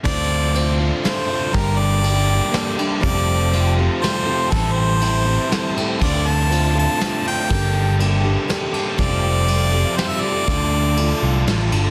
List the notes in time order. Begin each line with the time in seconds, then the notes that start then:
0.04 D2 D3 A3 C4 D4 F4 C5 D5 C6, kick, crash
0.54 D3 A3 C4 D4 F4 C5, ride
0.79 C4 F4 C5
1.04 A3 C4 F4 C5, snare, ride
1.29 A3 D4 F4
1.53 G1 G2 D3 G3 A#3 D4 G4 A4 A#4 A5, kick, ride
1.79 D5
2.02 G3 A#3 D4 G4 A4, ride
2.06 G4
2.51 A#3 D4 G4 A4, snare, ride
2.77 G3 A#3 D4 G4 A4, ride
3.00 F1 F2 C3 F3 G3 A3 C4 G4 A4 D5 F5, kick, ride
3.04 C4 F4
3.52 F3 G3 A3 C4 F4 G4 A4, ride
3.77 C4 G4 A4
4.01 G3 C4 G4 A4 C5, snare, ride
4.26 F3 A3 C4 F4 G4 A4
4.50 A1 A2 E3 G3 A3 C4 E4 G4 A4 C5, kick, ride
4.55 E4
4.73 C5
5.00 E3 G3 A3 C4 E4 A4, ride
5.25 G3 C4 E4 A4
5.50 G3 C4 E4 A4, snare, ride
5.74 G3 C4 E4 A4, ride
5.80 A3
5.99 D2 D3 A3 C4 D4 F4 A4 D5 C6, kick, crash
6.04 F4
6.27 A5
6.49 D3 A3 C4 D4 F4 A4, ride
6.75 C4 F4 A4
6.79 A5
6.99 A3 C4 F4 A4, snare, ride
7.25 A3 D4 F4 G5
7.49 G1 G2 D3 G3 A#3 D4 G4 A4 A5, kick, ride
7.99 G3 A#3 D4 G4 A4, ride
8.23 D4 G4 A4
8.48 A#3 D4 G4 A4, snare, ride
8.73 G3 A#3 D4 G4, ride
8.98 F1 F2 C3 F3 G3 A3 C4 F4 G4 A4 D5 F5, kick, ride
9.47 F3 G3 A3 C4 F4 G4 A4, ride
9.72 C4 G4 A4
9.97 G3 C4 G4 A4 C5, snare, ride
10.09 E5
10.21 F3 A3 C4 F4 D5
10.46 D2 D3 A3 D4 F4 A4 D5, kick, ride
10.96 D3 A3 D4 F4 A4, ride
11.22 C2 D4 F4 A4
11.47 A1 A3 D4 F4 A4, snare, ride
11.70 G1 A3 D4 F4, ride